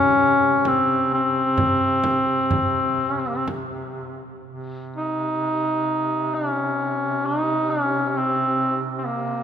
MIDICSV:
0, 0, Header, 1, 4, 480
1, 0, Start_track
1, 0, Tempo, 916031
1, 825, Time_signature, 3, 2, 24, 8
1, 1311, Tempo, 969305
1, 2751, Tempo, 907716
1, 4878, End_track
2, 0, Start_track
2, 0, Title_t, "Duduk"
2, 0, Program_c, 0, 69
2, 0, Note_on_c, 0, 61, 111
2, 353, Note_on_c, 0, 60, 88
2, 361, Note_off_c, 0, 61, 0
2, 590, Note_off_c, 0, 60, 0
2, 595, Note_on_c, 0, 60, 96
2, 1613, Note_on_c, 0, 61, 61
2, 1620, Note_off_c, 0, 60, 0
2, 1653, Note_on_c, 0, 60, 63
2, 1660, Note_off_c, 0, 61, 0
2, 1698, Note_on_c, 0, 58, 59
2, 1706, Note_off_c, 0, 60, 0
2, 1741, Note_on_c, 0, 60, 61
2, 1748, Note_off_c, 0, 58, 0
2, 1788, Note_off_c, 0, 60, 0
2, 2529, Note_on_c, 0, 63, 88
2, 3245, Note_on_c, 0, 61, 72
2, 3253, Note_off_c, 0, 63, 0
2, 3728, Note_on_c, 0, 63, 92
2, 3736, Note_off_c, 0, 61, 0
2, 3961, Note_on_c, 0, 61, 80
2, 3969, Note_off_c, 0, 63, 0
2, 4165, Note_off_c, 0, 61, 0
2, 4165, Note_on_c, 0, 61, 56
2, 4209, Note_on_c, 0, 60, 78
2, 4217, Note_off_c, 0, 61, 0
2, 4544, Note_off_c, 0, 60, 0
2, 4639, Note_on_c, 0, 60, 49
2, 4681, Note_on_c, 0, 58, 62
2, 4689, Note_off_c, 0, 60, 0
2, 4878, Note_off_c, 0, 58, 0
2, 4878, End_track
3, 0, Start_track
3, 0, Title_t, "Duduk"
3, 0, Program_c, 1, 69
3, 0, Note_on_c, 1, 48, 50
3, 2193, Note_off_c, 1, 48, 0
3, 2278, Note_on_c, 1, 48, 45
3, 4878, Note_off_c, 1, 48, 0
3, 4878, End_track
4, 0, Start_track
4, 0, Title_t, "Frame drum"
4, 342, Note_on_c, 9, 64, 47
4, 394, Note_off_c, 9, 64, 0
4, 826, Note_on_c, 9, 64, 61
4, 878, Note_off_c, 9, 64, 0
4, 1067, Note_on_c, 9, 64, 55
4, 1119, Note_off_c, 9, 64, 0
4, 1313, Note_on_c, 9, 64, 54
4, 1362, Note_off_c, 9, 64, 0
4, 1793, Note_on_c, 9, 64, 49
4, 1843, Note_off_c, 9, 64, 0
4, 4878, End_track
0, 0, End_of_file